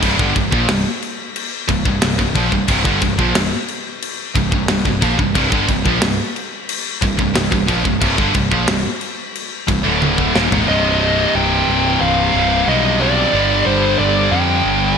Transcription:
0.02 picked electric bass C1, distorted electric guitar C2 G2, kick, crash
0.18 picked electric bass G1, distorted electric guitar G2 D3, kick
0.34 picked electric bass C1, distorted electric guitar C2 G2, kick, crash
0.51 picked electric bass A#1, distorted electric guitar A#2 F3, kick
0.69 picked electric bass C1, distorted electric guitar C2 G2, snare, crash
1.02 crash
1.36 crash
1.68 picked electric bass C1, distorted electric guitar C2 G2, kick, crash
1.85 picked electric bass C1, distorted electric guitar C2 G2, kick
2.01 picked electric bass C1, distorted electric guitar C2 G2, snare, crash
2.19 picked electric bass C1, distorted electric guitar C2 G2, kick
2.35 picked electric bass A#1, distorted electric guitar A#2 F3, kick, crash
2.52 picked electric bass C1, distorted electric guitar C2 G2, kick
2.68 picked electric bass C1, distorted electric guitar C2 G2, kick, crash
2.85 picked electric bass G1, distorted electric guitar G2 D3, kick
3.01 picked electric bass C1, distorted electric guitar C2 G2, kick, crash
3.18 picked electric bass A#1, distorted electric guitar A#2 F3, kick
3.35 picked electric bass C1, distorted electric guitar C2 G2, snare, crash
3.68 crash
4.02 crash
4.35 picked electric bass C1, distorted electric guitar C2 G2, kick, crash
4.52 picked electric bass C1, distorted electric guitar C2 G2, kick
4.68 picked electric bass C1, distorted electric guitar C2 G2, snare, crash
4.85 picked electric bass C1, distorted electric guitar C2 G2, kick
5.02 picked electric bass A#1, distorted electric guitar A#2 F3, kick, crash
5.19 picked electric bass C1, distorted electric guitar C2 G2, kick
5.35 picked electric bass C1, distorted electric guitar C2 G2, kick, crash
5.52 picked electric bass G1, distorted electric guitar G2 D3, kick
5.68 picked electric bass C1, distorted electric guitar C2 G2, kick, crash
5.86 picked electric bass A#1, distorted electric guitar A#2 F3, kick
6.00 picked electric bass C1, distorted electric guitar C2 G2, snare, crash
6.05 distorted electric guitar C2 G2
6.36 crash
6.69 crash
7.02 picked electric bass C1, distorted electric guitar C2 G2, kick, crash
7.19 picked electric bass C1, distorted electric guitar C2 G2, kick
7.35 picked electric bass C1, distorted electric guitar C2 G2, snare, crash
7.52 picked electric bass C1, distorted electric guitar C2 G2, kick
7.68 picked electric bass A#1, distorted electric guitar A#2 F3, kick, crash
7.85 picked electric bass C1, distorted electric guitar C2 G2, kick
8.01 picked electric bass C1, distorted electric guitar C2 G2, kick, crash
8.18 picked electric bass G1, distorted electric guitar G2 D3, kick
8.34 picked electric bass C1, distorted electric guitar C2 G2, kick, crash
8.51 picked electric bass A#1, distorted electric guitar A#2 F3, kick
8.68 picked electric bass C1, distorted electric guitar C2 G2, snare, crash
9.01 crash
9.35 crash
9.68 picked electric bass C1, distorted electric guitar C2 G2, kick, crash
9.83 picked electric bass D1, distorted electric guitar D2 A2 D3
10.02 high tom
10.18 kick
10.34 picked electric bass D#1, distorted electric guitar D#2 A#2, snare
10.51 picked electric bass G#1, distorted electric guitar G#2 D#3, floor tom
10.66 picked electric bass C1, distorted electric guitar C2 G2 C3, lead electric guitar D#5
11.35 picked electric bass C1, lead electric guitar G5
11.67 picked electric bass C1
12.01 picked electric bass C1, lead electric guitar F5
12.33 picked electric bass C1, distorted electric guitar C2 G2 C3
12.66 picked electric bass B1, distorted electric guitar C2 G2 C3, lead electric guitar D#5
12.99 distorted electric guitar C2 G2 C3, lead electric guitar D5
13.32 picked electric bass G1, distorted electric guitar G2 D3 G3
13.66 picked electric bass G1, lead electric guitar C5
13.99 picked electric bass G1, lead electric guitar D5
14.31 picked electric bass F2, lead electric guitar G5
14.65 picked electric bass G1

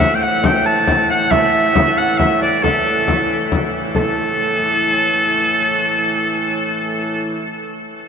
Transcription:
Already playing: hurdy-gurdy A2 E3, harp C5 F#5
0.00 harp E5, shawm E5, frame drum
0.15 shawm G5
0.22 shawm F#5, harp F#5, frame drum
0.44 harp G5, shawm G5, frame drum
0.65 harp A5, shawm A5, frame drum
0.87 harp G5, frame drum
1.10 shawm F#5, harp F#5, frame drum
1.31 harp E5, shawm E5, frame drum
1.54 frame drum
1.75 frame drum
1.98 harp F#5, shawm F#5, frame drum
2.18 shawm E5, harp E5, frame drum
2.42 shawm D5, harp D5, frame drum
2.63 shawm A4, harp A4, frame drum
3.08 frame drum
3.52 frame drum
3.95 hurdy-gurdy A2 E3, harp A4, shawm A4, frame drum

